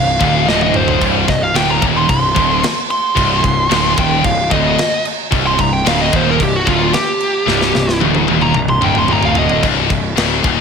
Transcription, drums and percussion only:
0.21 kick loud
0.21 crash medium
0.49 snare medium
0.61 high tom medium
0.74 mid tom loud
0.88 floor tom medium
1.02 kick loud
1.02 crash medium
1.28 kick loud
1.28 snare soft
1.28 crash medium
1.55 snare loud
1.55 crash medium
1.82 kick loud
1.82 crash medium
2.09 kick medium
2.09 crash medium
2.36 kick loud
2.36 crash medium
2.63 snare loud
2.63 crash medium
2.90 crash medium
3.17 kick loud
3.17 crash medium
3.44 kick loud
3.44 crash medium
3.71 snare loud
3.71 crash medium
3.98 kick loud
3.98 crash medium
4.24 kick loud
4.24 crash medium
4.51 kick loud
4.51 crash medium
4.78 snare loud
4.78 crash medium
5.05 crash medium
5.32 kick loud
5.32 crash medium
5.58 kick medium
5.58 crash medium
5.86 snare loud
5.86 crash medium
6.13 kick loud
6.13 crash medium
6.40 kick medium
6.40 crash medium
6.67 kick loud
6.67 crash medium
6.93 snare loud
6.93 crash medium
7.20 crash medium
7.48 snare medium
7.61 snare medium
7.75 snare medium
7.89 snare medium
8.01 high tom medium
8.15 high tom medium
8.28 high tom medium
8.41 mid tom medium
8.54 mid tom loud
8.68 mid tom medium
8.82 mid tom medium
8.95 mid tom medium
9.08 mid tom loud
9.23 floor tom medium
9.35 floor tom loud
9.49 floor tom medium
9.63 kick loud
9.63 crash medium
9.90 kick medium
9.90 crash medium
10.17 snare loud
10.17 crash medium
10.44 kick loud
10.44 crash medium

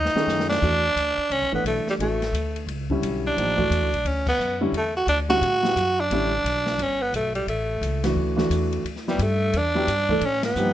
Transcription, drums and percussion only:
0.05 snare medium
0.17 snare medium
0.29 snare medium
0.29 hi-hat pedal medium
0.40 snare medium
0.51 snare medium
0.62 kick medium
0.62 crash medium
0.97 hi-hat pedal medium
0.97 ride medium
1.31 ride medium
1.66 hi-hat pedal medium
1.66 ride medium
1.87 snare soft
2.00 ride medium
2.22 snare soft
2.22 ride soft
2.35 hi-hat pedal medium
2.35 ride medium
2.56 ride soft
2.68 ride medium
2.90 kick medium
3.03 hi-hat pedal soft
3.03 ride medium
3.38 ride medium
3.58 kick medium
3.72 hi-hat pedal medium
3.72 ride medium
3.94 ride soft
4.06 ride medium
4.27 kick medium
4.27 crash medium
4.40 hi-hat pedal medium
4.74 ride medium
5.08 hi-hat pedal soft
5.08 ride medium
5.30 ride soft
5.43 ride medium
5.65 snare medium
5.77 hi-hat pedal medium
5.77 ride medium
6.11 ride medium
6.46 hi-hat pedal medium
6.46 ride medium
6.66 snare medium
6.79 ride medium
7.14 hi-hat pedal medium
7.14 ride medium
7.35 ride soft
7.48 ride medium
7.83 hi-hat pedal medium
7.83 ride medium
8.04 snare medium
8.04 ride medium
8.38 snare medium
8.51 hi-hat pedal medium
8.51 ride medium
8.73 ride soft
8.86 ride medium
8.96 snare soft
9.08 snare soft
9.19 hi-hat pedal medium
9.19 ride medium
9.53 ride medium
9.88 hi-hat pedal medium
9.88 ride medium
10.09 kick medium
10.21 ride medium
10.43 snare medium
10.43 ride medium
10.56 hi-hat pedal medium

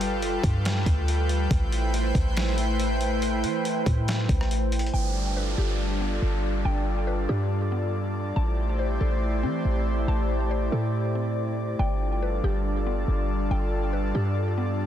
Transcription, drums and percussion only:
0.01 closed hi-hat medium
0.22 closed hi-hat medium
0.44 kick medium
0.44 closed hi-hat medium
0.65 snare loud
0.65 closed hi-hat medium
0.86 kick medium
0.86 closed hi-hat medium
1.08 closed hi-hat medium
1.29 closed hi-hat medium
1.51 kick loud
1.51 closed hi-hat medium
1.72 closed hi-hat medium
1.94 closed hi-hat medium
2.15 kick loud
2.15 closed hi-hat medium
2.37 snare loud
2.37 closed hi-hat medium
2.58 closed hi-hat medium
2.80 closed hi-hat medium
3.01 closed hi-hat medium
3.22 closed hi-hat medium
3.44 closed hi-hat medium
3.65 closed hi-hat medium
3.86 kick medium
3.86 closed hi-hat medium
4.08 snare loud
4.08 closed hi-hat medium
4.29 kick loud
4.29 closed hi-hat medium
4.41 cross-stick medium
4.51 closed hi-hat medium
4.72 closed hi-hat medium
4.79 closed hi-hat medium
4.86 closed hi-hat medium

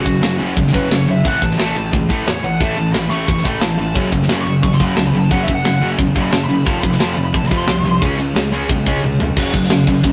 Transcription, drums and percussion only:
0.06 kick medium
0.06 crash medium
0.23 snare loud
0.23 crash medium
0.40 crash medium
0.57 kick loud
0.57 crash medium
0.67 snare soft
0.74 kick medium
0.74 crash medium
0.91 snare loud
0.91 crash medium
1.08 crash medium
1.25 kick loud
1.25 crash medium
1.42 kick medium
1.42 crash medium
1.51 snare soft
1.59 snare loud
1.59 crash medium
1.76 crash medium
1.93 kick loud
1.93 crash medium
2.10 kick medium
2.10 crash medium
2.27 snare loud
2.27 crash medium
2.44 crash medium
2.61 kick loud
2.61 crash medium
2.78 crash medium
2.94 snare loud
2.94 crash medium
3.11 crash medium
3.28 kick loud
3.28 crash medium
3.38 snare soft
3.45 kick medium
3.45 crash medium
3.61 snare loud
3.61 crash medium
3.79 crash medium
3.95 kick loud
3.95 crash medium
4.12 kick medium
4.12 crash medium
4.22 snare soft
4.29 snare loud
4.29 crash medium
4.46 crash medium
4.63 kick loud
4.63 crash medium
4.72 snare soft
4.80 kick medium
4.80 crash medium
4.96 snare loud
4.96 crash medium
5.14 crash medium
5.31 kick loud
5.31 crash medium
5.48 kick medium
5.48 crash medium
5.65 snare loud
5.65 crash medium
5.82 crash medium
5.99 kick loud
5.99 crash medium
6.16 kick medium
6.16 crash medium
6.32 snare loud
6.32 crash medium
6.50 crash medium
6.66 kick loud
6.66 crash medium
6.83 kick medium
6.83 crash medium
6.92 snare soft
7.00 snare loud
7.00 crash medium
7.17 crash medium
7.34 kick loud
7.34 crash medium
7.43 snare soft
7.51 kick medium
7.51 crash medium
7.67 snare loud
7.67 crash medium
7.86 crash medium
8.02 kick loud
8.02 crash medium
8.20 crash medium
8.36 snare loud
8.36 crash medium
8.54 crash medium
8.69 kick loud
8.69 crash medium
8.86 kick medium
8.86 crash medium
9.04 high tom medium
9.20 floor tom medium
9.37 kick loud
9.37 crash loud
9.37 crash medium
9.54 kick medium
9.54 crash medium
9.63 snare soft
9.70 snare loud
9.70 crash medium
9.87 kick medium
9.87 crash medium
10.03 kick medium
10.03 crash medium

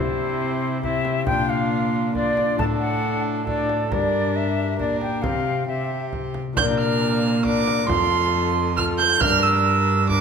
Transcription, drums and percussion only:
0.84 frame drum soft
1.05 frame drum medium
1.27 frame drum medium
2.15 frame drum soft
2.37 frame drum medium
2.59 frame drum medium
3.47 frame drum soft
3.69 frame drum medium
3.92 frame drum medium
4.79 frame drum soft
5.01 frame drum soft
5.24 frame drum medium
6.13 frame drum soft
6.34 frame drum soft
6.57 frame drum medium
7.45 frame drum medium
7.67 frame drum medium
7.89 frame drum medium
8.78 frame drum medium
8.99 frame drum medium
9.21 frame drum medium
10.09 frame drum medium

